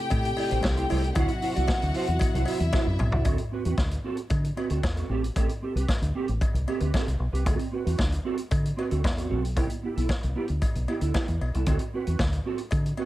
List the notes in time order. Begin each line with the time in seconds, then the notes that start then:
Already playing: C3 A3 G4 G5
0.10 A2, muted clean electric guitar stroke, kick, closed hi-hat, cowbell
0.25 muted clean electric guitar stroke, closed hi-hat
0.37 E4 G4 D5, open hi-hat, cowbell
0.50 A1 E4 G4 C5, closed hi-hat
0.63 C2, muted clean electric guitar stroke, kick, snare, cowbell
0.76 E4 G4 C5, closed hi-hat
0.89 C2 E4 G4 C5, open hi-hat, cowbell
1.03 muted clean electric guitar stroke, closed hi-hat
1.15 D2 F#3 E4 F#4 C5 F#5, kick, closed hi-hat, cowbell
1.28 muted clean electric guitar stroke, closed hi-hat
1.42 E4 F#4 C5, open hi-hat
1.55 C2 E4 F#4 D5, closed hi-hat
1.68 muted clean electric guitar stroke, kick, snare, cowbell
1.81 D2, muted clean electric guitar stroke, closed hi-hat
1.94 E4 F#4 C5, open hi-hat
2.07 E2, muted clean electric guitar stroke, closed hi-hat
2.19 muted clean electric guitar stroke, kick, closed hi-hat, cowbell
2.34 C2 E4 F#4 C5, closed hi-hat
2.45 E4 F#4 C5 E5, open hi-hat, cowbell
2.60 E2, muted clean electric guitar stroke, closed hi-hat
2.72 E4 F#4 C5, kick, snare, cowbell
2.85 F#2, muted clean electric guitar stroke
2.98 B1, muted clean electric guitar stroke, mid tom, cowbell
3.11 C2 E4 F#4 D5, floor tom
3.25 D2 C4 F#4 A4, kick, closed hi-hat, cowbell
3.38 muted clean electric guitar stroke, closed hi-hat
3.52 C4 F#4 B4
3.65 E2 C4 F#4 B4, closed hi-hat
3.78 D2, muted clean electric guitar stroke, kick, snare, cowbell
3.91 muted clean electric guitar stroke, closed hi-hat
4.04 C4 F#4 A4
4.17 muted clean electric guitar stroke, closed hi-hat
4.30 D3, muted clean electric guitar stroke, kick, closed hi-hat, cowbell
4.44 muted clean electric guitar stroke, closed hi-hat
4.56 C4 F#4 B4, cowbell
4.70 D2 C4 F#4 A4, closed hi-hat
4.83 E2, muted clean electric guitar stroke, kick, snare, cowbell
4.96 C4 F#4 A4, closed hi-hat
5.09 A1 C4 G4 A4
5.23 muted clean electric guitar stroke, closed hi-hat
5.36 A1 C4 G4 A4, kick, closed hi-hat, cowbell
5.49 muted clean electric guitar stroke, closed hi-hat
5.62 C4 G4 A4
5.75 C2 C4 G4 B4, closed hi-hat
5.88 muted clean electric guitar stroke, kick, snare, cowbell
6.02 D2, muted clean electric guitar stroke, closed hi-hat
6.15 C4 G4 A4
6.28 A1, muted clean electric guitar stroke, closed hi-hat
6.41 muted clean electric guitar stroke, kick, closed hi-hat, cowbell
6.54 C2, muted clean electric guitar stroke, closed hi-hat
6.67 C4 G4 A4, cowbell
6.80 D2 C4 G4 B4, closed hi-hat
6.94 C4 G4 A4, kick, snare, cowbell
7.06 C2, muted clean electric guitar stroke, closed hi-hat
7.20 B1, muted clean electric guitar stroke
7.32 C2 C4 G4 B4, closed hi-hat
7.45 D2 C4 F#4 A4, kick, closed hi-hat, cowbell
7.59 muted clean electric guitar stroke, closed hi-hat
7.72 C4 F#4 B4
7.85 E2 C4 F#4 B4, closed hi-hat
7.98 D2, muted clean electric guitar stroke, kick, snare, cowbell
8.12 muted clean electric guitar stroke, closed hi-hat
8.25 C4 F#4 A4
8.38 muted clean electric guitar stroke, closed hi-hat
8.51 D3, muted clean electric guitar stroke, kick, closed hi-hat, cowbell
8.63 muted clean electric guitar stroke, closed hi-hat
8.77 C4 F#4 B4, cowbell
8.90 D2 C4 F#4 A4, closed hi-hat
9.04 E2, muted clean electric guitar stroke, kick, snare, cowbell
9.17 C4 F#4 A4, closed hi-hat
9.29 B1 C4 F#4 A4
9.43 muted clean electric guitar stroke, closed hi-hat
9.56 C2 B3 E4 G4, kick, closed hi-hat, cowbell
9.69 muted clean electric guitar stroke, closed hi-hat
9.83 B3 E4 G4
9.96 B1 B3 E4 A4, closed hi-hat
10.09 muted clean electric guitar stroke, kick, snare, cowbell
10.22 C2, muted clean electric guitar stroke, closed hi-hat
10.35 B3 E4 G4
10.48 D2, muted clean electric guitar stroke, closed hi-hat
10.62 muted clean electric guitar stroke, kick, closed hi-hat, cowbell
10.75 B1, muted clean electric guitar stroke, closed hi-hat
10.88 B3 E4 G4, cowbell
11.01 D2 B3 E4 A4, closed hi-hat
11.14 B3 E4 G4, kick, snare, cowbell
11.27 E2, muted clean electric guitar stroke, closed hi-hat
11.41 B1, muted clean electric guitar stroke, cowbell
11.54 C2 B3 E4 A4, closed hi-hat
11.66 D2 C4 F#4 A4, kick, closed hi-hat, cowbell
11.79 muted clean electric guitar stroke, closed hi-hat
11.93 C4 F#4 B4
12.07 E2 C4 F#4 B4, closed hi-hat
12.19 D2, muted clean electric guitar stroke, kick, snare, cowbell
12.32 muted clean electric guitar stroke, closed hi-hat
12.45 C4 F#4 A4
12.58 muted clean electric guitar stroke, closed hi-hat
12.71 D3, muted clean electric guitar stroke, kick, closed hi-hat, cowbell
12.85 muted clean electric guitar stroke, closed hi-hat
12.97 C4 F#4 B4, cowbell